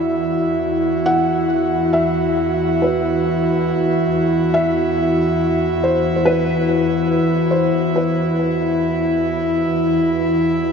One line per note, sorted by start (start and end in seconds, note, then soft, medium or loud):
0.00 10.72 E2 medium
0.00 10.72 E3 medium
0.00 10.72 E4 medium
0.00 10.72 F#4 medium
0.00 1.14 E5 medium
1.06 1.98 F#5 loud
1.93 2.84 E5 medium
2.82 4.07 B4 medium
4.54 5.36 E5 loud
5.84 6.15 C5 medium
6.16 6.24 C5 medium
6.25 7.58 B4 loud
7.51 7.97 C5 medium
7.96 8.79 B4 medium